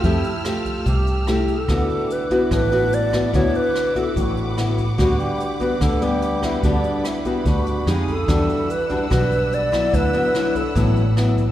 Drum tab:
HH |xxxxxxxx|xxxxxxxx|xxxxxxxx|xxxxxxxx|
SD |--r---r-|r---r--r|--r---r-|r---r--r|
BD |o--oo--o|o--oo--o|o--oo--o|o--oo--o|

HH |xxxxxxxx|xxxxxxxx|xxxxxxxx|
SD |--r---r-|r---r--r|--r---r-|
BD |o--oo--o|o--oo--o|o--oo--o|